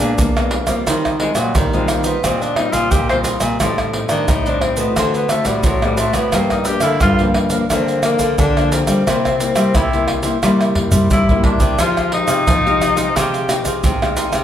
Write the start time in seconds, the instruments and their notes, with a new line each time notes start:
Already playing: nylon-string guitar A#2 G#3 B3 D4, trumpet D4
0.00 nylon-string guitar A#2, cavaquinho G#4 A#4 D5 F5
0.18 nylon-string guitar F3 A#3, pandeiro, shaker, surdo
0.37 nylon-string guitar G#3 B3 D4, cavaquinho A#4 D5 F5, pandeiro, tamborim, shaker
0.51 pandeiro
0.67 nylon-string guitar G3 A#3 C4 F4, cavaquinho A#4 D5 F5, pandeiro, tamborim, shaker, surdo
0.86 nylon-string guitar D#3, cavaquinho G4 C5 D#5, pandeiro, tamborim, shaker, surdo
1.05 cavaquinho C5 D#5, pandeiro, tamborim, shaker, surdo
1.20 nylon-string guitar G3 C4 F4, tenor saxophone G#3, muted cavaquinho stroke, pandeiro
1.35 nylon-string guitar A#2, tenor saxophone F#3, cavaquinho C5 D#5, pandeiro, tamborim, shaker
1.55 nylon-string guitar A#2 D#3, tenor saxophone G3, pandeiro, tamborim, shaker, surdo
1.73 nylon-string guitar G3 C4 F4, tenor saxophone G#3, cavaquinho C5 D#5, pandeiro, shaker
1.88 tenor saxophone A#3, pandeiro, tamborim, shaker, surdo
2.04 nylon-string guitar G3 C4 F4, tenor saxophone B3, cavaquinho C5 D#5, pandeiro, shaker
2.23 nylon-string guitar A#2 D#3 G3 C4 F4, tenor saxophone C4, cavaquinho G4 C5 D#5, pandeiro, tamborim, shaker, surdo
2.41 tenor saxophone D4, cavaquinho C5 D#5, pandeiro, shaker
2.56 nylon-string guitar G3 C4 F4, tenor saxophone D#4, pandeiro, tamborim
2.72 nylon-string guitar A#2, tenor saxophone F4, cavaquinho C5 D#5, pandeiro, shaker, surdo
2.91 nylon-string guitar A#2, tenor saxophone G4, cavaquinho G4 C5 D#5, pandeiro, shaker, surdo
3.09 nylon-string guitar G3 C4 F4, tenor saxophone C5, cavaquinho D#5, pandeiro, tamborim, shaker
3.24 cavaquinho G4 C5 D#5, pandeiro, shaker
3.40 nylon-string guitar A#2, cavaquinho D#5, pandeiro, tamborim, shaker, surdo
3.60 nylon-string guitar A2 G3 C4 D#4, cavaquinho G4 C5 D#5 A5, pandeiro, tamborim, shaker, surdo
3.78 cavaquinho C5 D#5 A5, pandeiro, tamborim, shaker, surdo
3.93 nylon-string guitar G3 C4 D#4, muted cavaquinho stroke, pandeiro
4.09 nylon-string guitar D#3, tenor saxophone D4, cavaquinho C5 D#5 A5, pandeiro, tamborim, shaker
4.28 nylon-string guitar A2, tenor saxophone D#4, pandeiro, tamborim, shaker, surdo
4.46 nylon-string guitar G3 C4 D#4, tenor saxophone D4, cavaquinho C5 D#5 A5, pandeiro, shaker
4.61 tenor saxophone C4, pandeiro, tamborim, surdo
4.77 nylon-string guitar A3 C4 F#4, tenor saxophone B3, cavaquinho C5 D#5 A5, pandeiro, shaker
4.96 nylon-string guitar D3, tenor saxophone C4, cavaquinho D4 C5 D5 F#5, pandeiro, tamborim, shaker, surdo
5.14 tenor saxophone B3, cavaquinho D5 F#5, pandeiro, shaker
5.19 cavaquinho C5
5.29 tenor saxophone A3, nylon-string guitar A3 C4 F#4, muted cavaquinho stroke, pandeiro, tamborim, shaker
5.45 nylon-string guitar A2, tenor saxophone G3, cavaquinho D5 F#5, pandeiro, shaker, surdo
5.49 cavaquinho C5
5.63 nylon-string guitar A2, tenor saxophone F#3, cavaquinho D4 C5 D5, pandeiro, shaker, surdo
5.68 cavaquinho F#5
5.82 tenor saxophone G3, nylon-string guitar A3 C4 F#4, cavaquinho C5 D5 F#5, pandeiro, tamborim, shaker
5.97 tenor saxophone A3, cavaquinho D4 C5 D5, pandeiro, shaker
6.02 cavaquinho F#5
6.13 nylon-string guitar A2, tenor saxophone B3, cavaquinho D5 F#5, pandeiro, tamborim, shaker, surdo
6.32 nylon-string guitar G2 F3 A#3 D4, tenor saxophone A#3, cavaquinho G4 A#4 D5, pandeiro, tamborim, shaker, surdo
6.37 cavaquinho F5
6.50 tenor saxophone D#4, cavaquinho F5, pandeiro, tamborim, shaker, surdo
6.54 cavaquinho A#4 D5
6.65 nylon-string guitar F3 A#3 D4, tenor saxophone G4, muted cavaquinho stroke, pandeiro, shaker
6.80 nylon-string guitar D3, tenor saxophone E4, cavaquinho A#4 D5 F5, pandeiro, tamborim, shaker
7.01 nylon-string guitar G2 D3, tenor saxophone F4, pandeiro, tamborim, shaker, surdo
7.19 nylon-string guitar F3 A#3 D4, cavaquinho A#4 D5 F5, pandeiro, shaker
7.34 pandeiro, tamborim, surdo
7.50 nylon-string guitar F3 A#3 D4, cavaquinho A#4 D5 F5, pandeiro, shaker
7.70 nylon-string guitar G2 D3 F3 A#3 D4, tenor saxophone C4, cavaquinho G4 A#4 D5 F5, pandeiro, tamborim, shaker, surdo
7.87 cavaquinho A#4 D5 F5, pandeiro, shaker
8.03 nylon-string guitar F3 A#3 D4, tenor saxophone A#3, muted cavaquinho stroke, pandeiro, tamborim, shaker
8.18 nylon-string guitar D3, cavaquinho A#4 D5 F5, pandeiro, shaker, surdo
8.38 nylon-string guitar D3, tenor saxophone D4, cavaquinho G4 A#4 D5 F5, pandeiro, shaker, surdo
8.57 nylon-string guitar F3 A#3 D4, cavaquinho A#4 D5 F5, pandeiro, tamborim, shaker
8.72 tenor saxophone C4, cavaquinho G4 A#4 D5 F5, pandeiro, shaker
8.87 nylon-string guitar G3, cavaquinho A#4 D5 F5, pandeiro, tamborim, shaker, surdo
9.06 nylon-string guitar C3 G3 A#3 E4, cavaquinho E4 A#4 C5 E5, pandeiro, tamborim, shaker, surdo
9.25 cavaquinho A#4 C5 E5, pandeiro, tamborim, shaker, surdo
9.40 nylon-string guitar G3 A#3 E4, pandeiro, shaker
9.56 nylon-string guitar G3, cavaquinho A#4 C5 E5, pandeiro, tamborim, shaker
9.75 nylon-string guitar G2 C3, tenor saxophone E4, pandeiro, tamborim, shaker, surdo
9.93 nylon-string guitar G3 A#3 E4, cavaquinho A#4 C5 E5, pandeiro, shaker
10.08 pandeiro, tamborim, surdo
10.23 nylon-string guitar G3 A#3 E4, cavaquinho A#4 C5 E5, pandeiro, shaker
10.43 nylon-string guitar C3 G3 A#3 E4, cavaquinho E4 A#4 C5 E5, pandeiro, tamborim, shaker, surdo
10.61 cavaquinho A#4 C5 E5, pandeiro, tamborim, shaker
10.75 nylon-string guitar G3 A#3 E4, muted cavaquinho stroke, surdo, pandeiro
10.92 nylon-string guitar G3, cavaquinho A#4 C5 E5, surdo, pandeiro, shaker
11.10 nylon-string guitar G2 G3, cavaquinho E4 A#4 C5 E5, tenor saxophone E4, pandeiro, shaker, surdo
11.29 nylon-string guitar G3 A#3 E4, cavaquinho A#4 C5 E5, pandeiro, shaker, surdo
11.44 tenor saxophone D4, cavaquinho E4 A#4 C5 E5, pandeiro, surdo
11.60 nylon-string guitar C3, cavaquinho A#4 C5 E5, pandeiro, shaker, surdo
11.78 nylon-string guitar F3 G#3 D#4 G4, cavaquinho D#4 G#4 C5 F5, tenor saxophone F4, pandeiro, tamborim, shaker, surdo
11.97 cavaquinho G#4 C5, pandeiro, tamborim, shaker, surdo
12.12 nylon-string guitar G#3 D#4 G4, tenor saxophone D#4, muted cavaquinho stroke, pandeiro
12.28 nylon-string guitar C3, cavaquinho G#4 C5 F5, pandeiro, tamborim, shaker
12.47 nylon-string guitar C3 F3, pandeiro, tamborim, shaker, surdo
12.65 nylon-string guitar G#3 D#4 G4, cavaquinho G#4 C5 F5, pandeiro, shaker
12.82 pandeiro, tamborim, shaker, surdo
12.96 nylon-string guitar G#3 D#4 G4, cavaquinho G#4 C5 F5, pandeiro, shaker
13.16 nylon-string guitar C3 F3 G#3 D#4 G4, cavaquinho D#4 G#4 C5 F5, tenor saxophone G4, pandeiro, tamborim, shaker, surdo
13.34 cavaquinho G#4 C5 F5, pandeiro, shaker
13.49 nylon-string guitar G#3 D#4 G4, muted cavaquinho stroke, pandeiro, tamborim, shaker
13.65 nylon-string guitar C3, cavaquinho G#4 C5 F5, pandeiro, shaker, surdo
13.84 nylon-string guitar C3, cavaquinho D#4 G#4 C5 F5, pandeiro, shaker, surdo
14.02 nylon-string guitar G#3 D#4 G4, cavaquinho G#4 C5 F5, pandeiro, tamborim, shaker
14.17 cavaquinho D#4 G#4 C5 F5, pandeiro, shaker
14.33 nylon-string guitar C3, cavaquinho G#4 C5 F5, pandeiro, tamborim, shaker, surdo